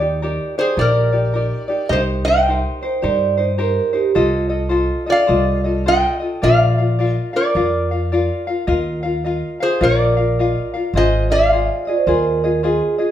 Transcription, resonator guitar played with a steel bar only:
0.59 G#4 C5
0.79 A#4 D5
1.89 C5 D#5
2.25 D#5 G5
5.10 D5 F5
5.88 D#5 G5
6.43 D5 F5
7.12 D#5
7.36 A#4 D5
9.63 G#4 C5
9.83 A#4 D5
10.97 C5 D#5
11.32 D5 F5

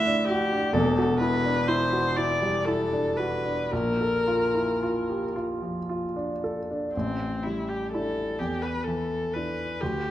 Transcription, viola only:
Already playing: E5
0.28 G4
0.73 A4
1.20 B4
1.67 C5
2.16 D5
2.65 A4
3.17 B4
3.71 A#4
6.94 C4
7.43 E4
7.69 G4
7.92 A4
8.39 G4
8.62 B4
8.84 A4
9.34 B4
9.80 G4

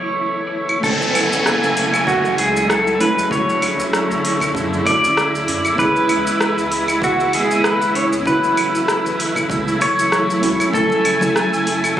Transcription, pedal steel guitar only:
Already playing: C#5
0.84 A4
2.08 F#4
2.39 G#4
2.70 A4
3.01 B4
3.32 C#5
4.87 D5
5.79 B4
7.04 F#4
7.35 G#4
7.66 B4
7.96 C#5
8.27 B4
9.82 C#5
10.74 A4

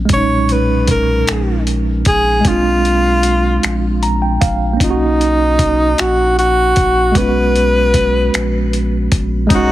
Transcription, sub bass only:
0.10 B1
1.30 A#1
2.07 A#1
2.46 B1
3.64 A#1
4.43 A#1
4.81 B1
6.00 A#1
6.78 A#1
7.16 B1
8.35 A#1
9.13 A#1
9.51 B1

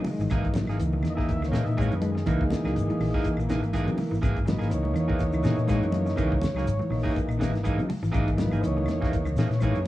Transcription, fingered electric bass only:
0.18 G#1
0.31 G#1
0.67 G#1
0.79 C#2
1.04 E2
1.42 C#2
1.52 A#2
1.66 A#2
1.90 F#2
2.27 C#2
2.64 C#2
2.75 G#1
2.99 A#1
3.25 muted fingered electric bass stroke
3.37 A#1
3.62 G#1
3.87 C#3
4.11 G#1
4.23 G#1
4.60 G#1
4.70 C#2
4.94 E2
5.32 C#2
5.43 A#2
5.57 A#2
5.81 F#2
6.18 C#2
6.54 C#2
6.65 G#1
6.90 A#1
7.16 muted fingered electric bass stroke
7.28 A#1
7.53 G#1
7.77 C#3
8.02 G#1
8.15 G#1
8.52 G#1
8.63 C#2
8.87 E2
9.25 C#2
9.35 A#2
9.49 A#2
9.74 F#2

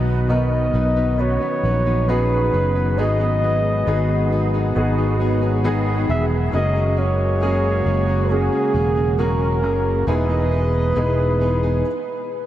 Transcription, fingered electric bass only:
Already playing: B1
0.74 B1
1.63 A#1
2.53 F#1
2.98 G#1
3.87 G#1
4.76 G#1
6.09 E1
6.53 F#1
7.86 F#1
8.74 E1
9.63 F#1
10.07 E1
10.97 E1

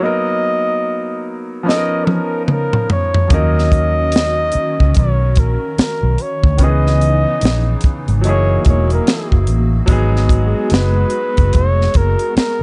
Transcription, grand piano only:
0.00 F#3 A#3 B3 D#4
0.06 A#4
1.63 F3 B3 C#4
1.68 D#4 A4
1.76 A#4
3.28 F3 A#3 C#4
3.32 F#3 D#4 A#4
6.58 D#3 B3 C#4
6.62 E3 D#4 G#4
8.21 F#3 A3 D#4
8.27 A#3 E4 G#4
9.86 F#3 G#3 B3
9.91 D#4 G#4

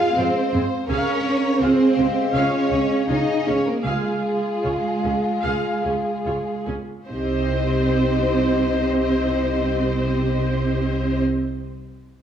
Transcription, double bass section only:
0.17 F2
0.53 F2
0.88 C#2
1.61 C#2
1.97 C#2
2.34 C#2
2.72 C#2
3.10 C#2
3.48 C#2
3.86 C#2
4.65 C#2
5.04 C#2
5.44 C#2
5.85 C#2
6.26 C#2
6.67 C#2
7.09 C2

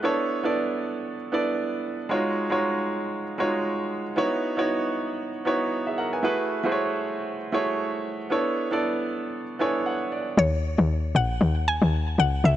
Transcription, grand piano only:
0.03 B3 D4 E4 A4 C#5
0.43 B3 D4 E4 A4 D5
1.32 B3 D4 E4 A4 D5
2.09 G#3 D#4 F4 F#4 C#5
2.50 G#3 D#4 F4 F#4 C#5
3.38 G#3 D#4 F4 F#4 C#5
4.16 B3 D#4 E4 F#4 C#5
4.57 B3 D#4 E4 F#4 C#5
5.45 B3 D#4 E4 F#4 C#5
5.87 G#4 E5
5.98 A#4 F#5
6.13 B4 G#5
6.23 A3 E4 F#4 G#4 B4
6.64 A3 E4 F#4 G#4 C5
6.72 C#5
7.52 A3 E4 F#4 G#4 C#5
8.30 B3 D4 E4 A4 C#5
8.71 B3 D4 E4 A4 D5
9.59 B3 D4 E4 A4 C#5 G#5
9.86 F#5
10.12 D5

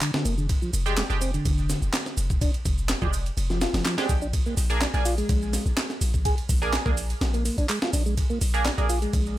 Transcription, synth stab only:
0.86 G#3 D4 G4
1.10 G#3 D4 G4
3.02 G#3 D4 G4
3.98 G#3 D4 G4
4.70 A#3 D4 G#4
4.94 A#3 D4 G#4
6.62 A#3 D4 G#4
6.86 A#3 D4 G#4
8.54 A#3 D4 G#4
8.78 A#3 D4 G#4

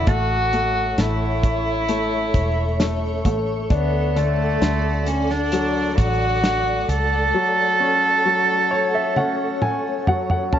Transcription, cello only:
Already playing: E4
0.09 F#4
1.00 E4
3.72 B3
4.17 A3
5.07 C#4
5.30 D4
5.97 F#4
6.88 A4

